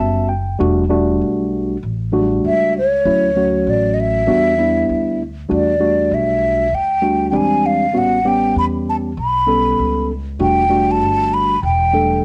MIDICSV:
0, 0, Header, 1, 4, 480
1, 0, Start_track
1, 0, Tempo, 612245
1, 474, Time_signature, 4, 2, 24, 8
1, 9602, End_track
2, 0, Start_track
2, 0, Title_t, "Flute"
2, 0, Program_c, 0, 73
2, 0, Note_on_c, 0, 81, 104
2, 213, Note_off_c, 0, 81, 0
2, 1932, Note_on_c, 0, 76, 96
2, 2146, Note_off_c, 0, 76, 0
2, 2183, Note_on_c, 0, 73, 102
2, 2899, Note_on_c, 0, 74, 87
2, 2911, Note_off_c, 0, 73, 0
2, 3089, Note_on_c, 0, 75, 62
2, 3100, Note_off_c, 0, 74, 0
2, 3138, Note_on_c, 0, 76, 91
2, 3149, Note_off_c, 0, 75, 0
2, 4085, Note_off_c, 0, 76, 0
2, 4334, Note_on_c, 0, 74, 83
2, 4816, Note_on_c, 0, 76, 84
2, 4827, Note_off_c, 0, 74, 0
2, 5290, Note_on_c, 0, 79, 91
2, 5302, Note_off_c, 0, 76, 0
2, 5721, Note_off_c, 0, 79, 0
2, 5724, Note_on_c, 0, 79, 58
2, 5774, Note_on_c, 0, 80, 87
2, 5786, Note_off_c, 0, 79, 0
2, 6006, Note_on_c, 0, 77, 93
2, 6017, Note_off_c, 0, 80, 0
2, 6254, Note_on_c, 0, 78, 97
2, 6265, Note_off_c, 0, 77, 0
2, 6489, Note_on_c, 0, 79, 86
2, 6501, Note_off_c, 0, 78, 0
2, 6721, Note_off_c, 0, 79, 0
2, 6728, Note_on_c, 0, 83, 100
2, 6781, Note_off_c, 0, 83, 0
2, 6973, Note_on_c, 0, 81, 88
2, 7025, Note_off_c, 0, 81, 0
2, 7210, Note_on_c, 0, 83, 95
2, 7890, Note_off_c, 0, 83, 0
2, 8164, Note_on_c, 0, 79, 99
2, 8556, Note_on_c, 0, 81, 98
2, 8568, Note_off_c, 0, 79, 0
2, 8889, Note_on_c, 0, 83, 101
2, 8901, Note_off_c, 0, 81, 0
2, 9121, Note_off_c, 0, 83, 0
2, 9128, Note_on_c, 0, 79, 96
2, 9570, Note_off_c, 0, 79, 0
2, 9602, End_track
3, 0, Start_track
3, 0, Title_t, "Tine electric piano"
3, 0, Program_c, 1, 4
3, 0, Note_on_c, 1, 55, 62
3, 0, Note_on_c, 1, 59, 58
3, 0, Note_on_c, 1, 61, 54
3, 0, Note_on_c, 1, 66, 66
3, 0, Note_on_c, 1, 76, 65
3, 214, Note_off_c, 1, 76, 0
3, 227, Note_on_c, 1, 79, 65
3, 245, Note_off_c, 1, 55, 0
3, 245, Note_off_c, 1, 59, 0
3, 247, Note_off_c, 1, 61, 0
3, 249, Note_off_c, 1, 66, 0
3, 453, Note_off_c, 1, 79, 0
3, 463, Note_on_c, 1, 55, 75
3, 469, Note_on_c, 1, 57, 71
3, 470, Note_on_c, 1, 62, 76
3, 472, Note_on_c, 1, 66, 87
3, 651, Note_off_c, 1, 55, 0
3, 654, Note_off_c, 1, 57, 0
3, 655, Note_off_c, 1, 62, 0
3, 656, Note_off_c, 1, 66, 0
3, 701, Note_on_c, 1, 55, 83
3, 702, Note_on_c, 1, 57, 70
3, 707, Note_on_c, 1, 62, 77
3, 709, Note_on_c, 1, 66, 86
3, 1380, Note_off_c, 1, 55, 0
3, 1381, Note_off_c, 1, 57, 0
3, 1383, Note_off_c, 1, 62, 0
3, 1384, Note_off_c, 1, 66, 0
3, 1663, Note_on_c, 1, 54, 59
3, 1666, Note_on_c, 1, 57, 63
3, 1669, Note_on_c, 1, 62, 68
3, 1673, Note_on_c, 1, 66, 81
3, 1716, Note_on_c, 1, 55, 73
3, 1732, Note_off_c, 1, 54, 0
3, 2165, Note_off_c, 1, 57, 0
3, 2167, Note_off_c, 1, 62, 0
3, 2169, Note_off_c, 1, 66, 0
3, 2190, Note_off_c, 1, 55, 0
3, 2396, Note_on_c, 1, 54, 70
3, 2396, Note_on_c, 1, 57, 60
3, 2398, Note_on_c, 1, 61, 59
3, 2404, Note_on_c, 1, 64, 72
3, 2578, Note_off_c, 1, 54, 0
3, 2578, Note_off_c, 1, 57, 0
3, 2579, Note_off_c, 1, 61, 0
3, 2582, Note_off_c, 1, 64, 0
3, 2635, Note_on_c, 1, 54, 67
3, 2638, Note_on_c, 1, 57, 61
3, 2639, Note_on_c, 1, 61, 58
3, 2642, Note_on_c, 1, 66, 74
3, 3307, Note_off_c, 1, 54, 0
3, 3309, Note_off_c, 1, 57, 0
3, 3309, Note_off_c, 1, 61, 0
3, 3311, Note_off_c, 1, 66, 0
3, 3349, Note_on_c, 1, 55, 77
3, 3354, Note_on_c, 1, 59, 67
3, 3354, Note_on_c, 1, 62, 67
3, 3358, Note_on_c, 1, 66, 77
3, 3555, Note_off_c, 1, 55, 0
3, 3558, Note_off_c, 1, 59, 0
3, 3558, Note_off_c, 1, 62, 0
3, 3560, Note_off_c, 1, 66, 0
3, 3588, Note_on_c, 1, 55, 61
3, 3594, Note_on_c, 1, 59, 55
3, 3598, Note_on_c, 1, 62, 52
3, 3598, Note_on_c, 1, 64, 67
3, 4087, Note_off_c, 1, 55, 0
3, 4090, Note_off_c, 1, 59, 0
3, 4091, Note_off_c, 1, 62, 0
3, 4091, Note_off_c, 1, 64, 0
3, 4301, Note_on_c, 1, 55, 66
3, 4307, Note_on_c, 1, 57, 58
3, 4308, Note_on_c, 1, 62, 64
3, 4309, Note_on_c, 1, 66, 68
3, 4490, Note_off_c, 1, 55, 0
3, 4493, Note_off_c, 1, 57, 0
3, 4494, Note_off_c, 1, 62, 0
3, 4495, Note_off_c, 1, 66, 0
3, 4544, Note_on_c, 1, 55, 66
3, 4550, Note_on_c, 1, 62, 64
3, 4551, Note_on_c, 1, 57, 60
3, 4552, Note_on_c, 1, 66, 73
3, 5221, Note_off_c, 1, 55, 0
3, 5224, Note_off_c, 1, 62, 0
3, 5225, Note_off_c, 1, 57, 0
3, 5225, Note_off_c, 1, 66, 0
3, 5500, Note_on_c, 1, 55, 63
3, 5502, Note_on_c, 1, 57, 55
3, 5505, Note_on_c, 1, 62, 56
3, 5511, Note_on_c, 1, 66, 64
3, 5735, Note_off_c, 1, 62, 0
3, 5737, Note_off_c, 1, 55, 0
3, 5738, Note_on_c, 1, 56, 65
3, 5739, Note_on_c, 1, 60, 62
3, 5745, Note_on_c, 1, 62, 59
3, 5746, Note_on_c, 1, 55, 77
3, 5748, Note_off_c, 1, 57, 0
3, 5752, Note_off_c, 1, 66, 0
3, 6154, Note_off_c, 1, 56, 0
3, 6155, Note_off_c, 1, 60, 0
3, 6157, Note_off_c, 1, 62, 0
3, 6158, Note_off_c, 1, 55, 0
3, 6219, Note_on_c, 1, 55, 66
3, 6221, Note_on_c, 1, 59, 62
3, 6228, Note_on_c, 1, 61, 61
3, 6228, Note_on_c, 1, 66, 72
3, 6410, Note_off_c, 1, 55, 0
3, 6410, Note_off_c, 1, 59, 0
3, 6414, Note_off_c, 1, 61, 0
3, 6414, Note_off_c, 1, 66, 0
3, 6465, Note_on_c, 1, 55, 68
3, 6469, Note_on_c, 1, 59, 63
3, 6471, Note_on_c, 1, 61, 62
3, 6471, Note_on_c, 1, 67, 76
3, 7142, Note_off_c, 1, 55, 0
3, 7144, Note_off_c, 1, 59, 0
3, 7145, Note_off_c, 1, 61, 0
3, 7145, Note_off_c, 1, 67, 0
3, 7423, Note_on_c, 1, 59, 57
3, 7424, Note_on_c, 1, 55, 60
3, 7428, Note_on_c, 1, 61, 56
3, 7432, Note_on_c, 1, 69, 71
3, 7924, Note_off_c, 1, 55, 0
3, 7924, Note_off_c, 1, 59, 0
3, 7926, Note_off_c, 1, 61, 0
3, 7928, Note_off_c, 1, 69, 0
3, 8150, Note_on_c, 1, 55, 67
3, 8154, Note_on_c, 1, 57, 65
3, 8156, Note_on_c, 1, 62, 62
3, 8157, Note_on_c, 1, 66, 75
3, 8335, Note_off_c, 1, 55, 0
3, 8337, Note_off_c, 1, 57, 0
3, 8338, Note_off_c, 1, 62, 0
3, 8338, Note_off_c, 1, 66, 0
3, 8385, Note_on_c, 1, 55, 64
3, 8387, Note_on_c, 1, 57, 62
3, 8389, Note_on_c, 1, 62, 62
3, 8394, Note_on_c, 1, 66, 78
3, 9062, Note_off_c, 1, 55, 0
3, 9063, Note_off_c, 1, 57, 0
3, 9064, Note_off_c, 1, 62, 0
3, 9066, Note_off_c, 1, 66, 0
3, 9354, Note_on_c, 1, 55, 63
3, 9357, Note_on_c, 1, 57, 55
3, 9358, Note_on_c, 1, 62, 56
3, 9363, Note_on_c, 1, 69, 64
3, 9602, Note_off_c, 1, 55, 0
3, 9602, Note_off_c, 1, 57, 0
3, 9602, Note_off_c, 1, 62, 0
3, 9602, Note_off_c, 1, 69, 0
3, 9602, End_track
4, 0, Start_track
4, 0, Title_t, "Upright bass"
4, 0, Program_c, 2, 32
4, 0, Note_on_c, 2, 30, 80
4, 449, Note_off_c, 2, 30, 0
4, 475, Note_on_c, 2, 28, 108
4, 930, Note_off_c, 2, 28, 0
4, 951, Note_on_c, 2, 35, 83
4, 1408, Note_off_c, 2, 35, 0
4, 1432, Note_on_c, 2, 33, 87
4, 1888, Note_off_c, 2, 33, 0
4, 1915, Note_on_c, 2, 37, 83
4, 2370, Note_off_c, 2, 37, 0
4, 2392, Note_on_c, 2, 38, 95
4, 2849, Note_off_c, 2, 38, 0
4, 2876, Note_on_c, 2, 33, 85
4, 3331, Note_off_c, 2, 33, 0
4, 3355, Note_on_c, 2, 40, 85
4, 3810, Note_off_c, 2, 40, 0
4, 3836, Note_on_c, 2, 38, 81
4, 4291, Note_off_c, 2, 38, 0
4, 4318, Note_on_c, 2, 40, 93
4, 4772, Note_off_c, 2, 40, 0
4, 4793, Note_on_c, 2, 35, 84
4, 5249, Note_off_c, 2, 35, 0
4, 5271, Note_on_c, 2, 38, 82
4, 5728, Note_off_c, 2, 38, 0
4, 5747, Note_on_c, 2, 40, 96
4, 6226, Note_off_c, 2, 40, 0
4, 6226, Note_on_c, 2, 33, 102
4, 6686, Note_off_c, 2, 33, 0
4, 6708, Note_on_c, 2, 40, 82
4, 7167, Note_off_c, 2, 40, 0
4, 7191, Note_on_c, 2, 35, 94
4, 7648, Note_off_c, 2, 35, 0
4, 7676, Note_on_c, 2, 37, 85
4, 8130, Note_off_c, 2, 37, 0
4, 8150, Note_on_c, 2, 28, 95
4, 8638, Note_off_c, 2, 28, 0
4, 8638, Note_on_c, 2, 31, 86
4, 9092, Note_off_c, 2, 31, 0
4, 9117, Note_on_c, 2, 28, 89
4, 9571, Note_off_c, 2, 28, 0
4, 9602, End_track
0, 0, End_of_file